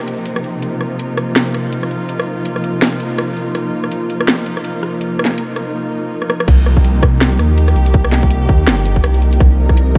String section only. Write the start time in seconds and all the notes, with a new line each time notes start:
Already playing: C3 F3 A#3 D#4 G4
0.60 F4
6.69 G4
9.62 A#4